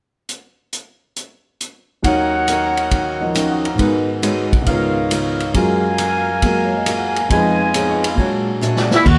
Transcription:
0.29 closed hi-hat medium
0.73 closed hi-hat medium
1.16 closed hi-hat medium
1.61 closed hi-hat medium
2.02 3.78 D#2 soft
2.02 3.19 D#3 soft
2.02 2.35 D#3 soft
2.02 3.80 F#3 soft
2.02 2.35 A#3 soft
2.02 2.36 C#4 soft
2.02 3.78 D#4 medium
2.02 2.36 F#4 medium
2.02 3.79 A#4 medium
2.02 3.79 C#5 medium
2.02 3.35 F5 soft
2.02 3.78 F#5 medium
2.02 kick soft
2.02 ride medium
2.07 3.81 C#5 medium
2.47 2.79 D#3 medium
2.47 2.79 A#3 medium
2.47 2.79 C#4 medium
2.47 2.79 F#4 medium
2.47 hi-hat pedal medium
2.47 ride medium
2.77 ride soft
2.91 3.22 D#3 soft
2.91 3.23 A#3 soft
2.91 3.23 C#4 soft
2.91 3.23 F#4 soft
2.91 kick soft
2.91 ride medium
3.21 3.76 D#3 soft
3.21 3.79 F3 soft
3.21 3.80 D#4 soft
3.21 3.80 A#4 soft
3.21 3.44 D#5 soft
3.21 3.44 A#5 soft
3.35 3.66 D#3 medium
3.35 3.66 A#3 medium
3.35 3.67 C#4 medium
3.35 3.67 F#4 medium
3.35 3.64 F5 soft
3.35 3.63 C#6 soft
3.35 hi-hat pedal medium
3.35 ride medium
3.50 3.73 F#5 soft
3.50 3.73 D#6 soft
3.65 3.87 F5 soft
3.65 3.88 A#5 soft
3.65 ride soft
3.75 4.63 G#2 soft
3.75 4.65 D#3 soft
3.75 4.10 G#3 soft
3.79 4.67 B3 soft
3.79 4.10 D#4 soft
3.79 4.65 D#4 medium
3.79 4.11 F#4 soft
3.79 4.69 F#4 soft
3.79 4.67 G#4 medium
3.79 4.11 B4 medium
3.79 4.67 F#5 medium
3.79 kick soft
3.79 ride soft
3.86 4.70 A#4 soft
4.22 4.54 G#3 medium
4.22 4.54 D#4 medium
4.22 4.54 F#4 medium
4.22 4.55 B4 medium
4.22 4.58 C#5 soft
4.22 hi-hat pedal soft
4.22 ride medium
4.46 4.76 B4 soft
4.53 kick medium
4.53 ride soft
4.62 5.52 C#2 soft
4.62 5.53 G#2 soft
4.66 4.98 C#3 soft
4.66 5.54 D#3 soft
4.66 4.98 B3 soft
4.66 5.55 B3 soft
4.66 5.54 D#4 medium
4.66 4.98 F4 soft
4.66 5.54 A#4 medium
4.66 4.99 A#4 soft
4.66 5.54 C#5 medium
4.66 5.54 F5 medium
4.66 kick soft
4.66 ride medium
4.70 5.56 F4 soft
4.70 5.57 A#4 medium
5.10 5.42 C#3 medium
5.10 5.42 B3 medium
5.10 5.42 F4 medium
5.10 5.42 A#4 medium
5.10 hi-hat pedal soft
5.10 ride medium
5.40 ride soft
5.54 7.30 F#2 soft
5.54 5.86 F#3 soft
5.54 7.30 F#3 soft
5.54 6.42 G#3 soft
5.54 5.86 A#3 medium
5.54 5.86 F4 soft
5.54 7.32 F4 soft
5.54 5.87 G#4 medium
5.54 7.30 A#4 medium
5.54 7.30 F5 medium
5.54 7.30 G#5 medium
5.54 kick soft
5.54 ride medium
5.58 6.44 A#4 medium
5.98 6.30 F#3 medium
5.98 6.30 A#3 medium
5.98 6.30 F4 medium
5.98 6.31 G#4 medium
5.98 hi-hat pedal soft
5.98 ride medium
6.42 6.73 F#3 soft
6.42 7.29 G#3 soft
6.42 6.74 A#3 soft
6.42 7.31 A#3 soft
6.42 6.74 F4 soft
6.42 7.31 F#4 soft
6.42 6.75 G#4 medium
6.42 7.32 A#4 soft
6.42 kick soft
6.42 ride medium
6.65 6.78 C#5 soft
6.77 6.91 D#5 soft
6.86 7.17 F#3 medium
6.86 7.17 A#3 medium
6.86 7.18 F4 medium
6.86 7.18 G#4 medium
6.86 7.08 F5 soft
6.86 hi-hat pedal medium
6.86 ride medium
6.98 7.17 F#5 soft
7.08 7.22 G#5 soft
7.16 ride soft
7.20 7.35 A#5 soft
7.29 8.17 F2 medium
7.29 8.18 F3 soft
7.29 7.62 F3 medium
7.29 8.16 G#3 soft
7.29 7.62 B3 medium
7.29 8.19 D#4 medium
7.29 7.62 D#4 medium
7.29 8.18 F4 medium
7.29 8.18 B4 medium
7.29 8.18 D#5 medium
7.29 8.17 G#5 medium
7.29 kick soft
7.29 ride medium
7.33 7.63 G#4 medium
7.33 8.20 B4 medium
7.74 8.05 F3 medium
7.74 8.06 B3 medium
7.74 8.06 D#4 medium
7.74 8.06 G#4 medium
7.74 8.02 C#5 soft
7.74 8.02 D#6 soft
7.74 hi-hat pedal medium
7.74 ride medium
7.89 8.12 D#5 soft
7.89 8.12 C#6 soft
8.03 8.26 F5 soft
8.03 8.26 B5 soft
8.03 ride medium
8.15 9.04 A#2 soft
8.15 8.49 A#2 soft
8.15 9.05 F#3 soft
8.15 9.05 G#3 soft
8.15 8.49 G#3 soft
8.15 9.06 F#4 medium
8.15 9.06 A#4 medium
8.15 9.06 G#5 medium
8.15 kick soft
8.19 9.06 D4 soft
8.19 8.50 D4 medium
8.19 8.50 F#4 soft
8.19 9.07 C#5 soft
8.61 8.93 A#2 medium
8.61 8.93 G#3 medium
8.61 8.94 D4 medium
8.61 8.94 F#4 medium
8.61 8.96 E5 soft
8.61 hi-hat pedal medium
8.77 snare soft
8.85 9.15 D5 soft
8.91 9.06 E4 medium
8.91 snare medium
9.06 9.19 D#2 medium
9.06 9.19 D#3 soft
9.06 9.19 A#3 soft
9.06 9.19 C#4 medium
9.06 9.19 F#4 medium
9.06 kick medium
9.06 crash medium

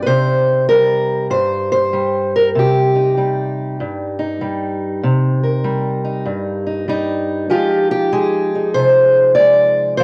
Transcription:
0.00 2.12 D#4 soft
0.00 0.07 B4 medium
0.06 1.31 C3 medium
0.06 0.68 C5 loud
0.69 1.93 G3 medium
0.69 1.30 A#4 medium
1.30 2.55 G2 medium
1.30 1.71 C5 medium
1.72 2.34 C5 loud
1.93 3.17 G3 medium
2.36 2.48 A#4 medium
2.55 3.80 C3 medium
2.55 4.21 G4 medium
2.95 4.18 D#4 soft
3.17 4.40 G3 medium
3.80 5.04 G2 medium
4.19 6.04 D#4 soft
4.41 5.01 G3 medium
5.03 6.28 C3 medium
5.43 7.49 A#4 soft
5.64 6.87 G3 medium
6.04 6.66 D#4 soft
6.25 7.51 G2 medium
6.67 6.89 D#4 soft
6.88 7.48 G3 medium
6.88 7.50 D#4 medium
7.50 9.96 F3 medium
7.50 8.12 G#3 medium
7.50 8.55 D#4 medium
7.50 8.12 F4 medium
7.50 7.90 G4 loud
7.91 8.74 G4 medium
8.13 9.37 G#3 medium
8.13 9.37 G#4 medium
8.55 10.03 D#4 soft
8.74 9.96 C3 medium
8.74 9.34 C5 loud
9.35 9.97 G#3 medium
9.35 9.97 D5 loud
9.97 10.04 F3 medium
9.97 10.04 C5 loud

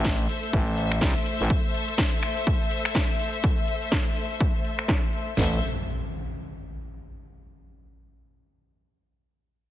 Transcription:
0.00 0.28 A1 loud
0.00 5.33 A3 medium
0.00 5.33 A4 medium
0.00 5.33 C5 medium
0.00 5.33 E5 medium
0.04 kick loud
0.04 snare loud
0.04 closed hi-hat medium
0.29 open hi-hat loud
0.43 closed hi-hat medium
0.53 1.00 A1 loud
0.53 kick loud
0.53 closed hi-hat medium
0.77 open hi-hat loud
0.92 finger snap medium
0.92 closed hi-hat medium
1.01 1.14 C2 loud
1.01 kick loud
1.01 snare loud
1.01 closed hi-hat medium
1.16 closed hi-hat soft
1.26 open hi-hat loud
1.40 1.48 A1 loud
1.40 closed hi-hat medium
1.50 kick loud
1.50 closed hi-hat medium
1.64 closed hi-hat soft
1.74 open hi-hat loud
1.88 closed hi-hat medium
1.98 kick loud
1.98 snare loud
1.98 closed hi-hat medium
2.23 finger snap medium
2.23 open hi-hat loud
2.37 closed hi-hat soft
2.47 kick loud
2.47 closed hi-hat medium
2.71 open hi-hat loud
2.85 finger snap medium
2.85 closed hi-hat medium
2.95 kick loud
2.95 snare loud
2.95 closed hi-hat medium
3.09 closed hi-hat soft
3.19 open hi-hat loud
3.34 closed hi-hat soft
3.44 kick loud
3.44 closed hi-hat medium
3.58 closed hi-hat soft
3.68 open hi-hat loud
3.82 closed hi-hat medium
3.92 kick loud
3.92 snare loud
3.92 closed hi-hat medium
4.06 closed hi-hat soft
4.16 open hi-hat loud
4.30 closed hi-hat medium
4.40 kick loud
4.40 closed hi-hat medium
4.55 closed hi-hat soft
4.65 open hi-hat loud
4.79 finger snap medium
4.79 closed hi-hat soft
4.88 kick loud
4.88 snare loud
5.03 closed hi-hat soft
5.13 open hi-hat loud
5.27 closed hi-hat medium
5.37 5.60 A1 loud
5.37 5.60 A3 medium
5.37 5.60 A4 medium
5.37 5.60 C5 medium
5.37 5.60 E5 medium
5.37 snare loud
5.37 floor tom loud
5.37 impact medium

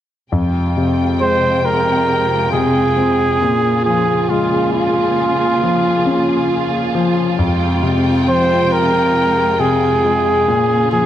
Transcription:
0.32 3.37 F2 medium
0.32 3.38 C3 medium
0.32 3.39 G#3 medium
0.32 11.06 F4 medium
0.32 3.39 G5 medium
0.77 2.49 C3 soft
1.21 2.94 G#3 soft
1.21 1.67 C5 medium
1.65 2.51 A#4 medium
2.52 3.39 C3 soft
2.52 3.81 G#4 medium
2.97 3.40 C4 soft
3.42 6.91 A#2 medium
3.42 7.35 C#3 medium
3.42 7.35 A#3 soft
3.42 7.35 G#4 medium
3.85 5.58 F3 soft
3.85 4.31 G#4 medium
4.29 6.03 G#3 soft
4.29 4.72 F4 medium
4.72 6.90 F4 medium
5.62 6.93 F3 soft
6.06 7.35 C#4 soft
6.95 7.38 F3 medium
7.39 10.44 F2 medium
7.39 10.45 C3 medium
7.39 10.45 G#3 medium
7.39 10.45 G5 medium
7.83 9.55 C3 soft
8.27 10.00 F3 soft
8.27 8.74 C5 medium
8.73 9.61 A#4 medium
9.59 10.45 C3 soft
9.59 10.91 G#4 medium
10.04 10.46 G#3 soft
10.47 11.06 A#2 medium
10.47 11.06 C#3 medium
10.47 11.06 A#3 medium
10.47 11.06 G#4 medium
10.92 11.06 F3 soft
10.92 11.06 G#4 medium

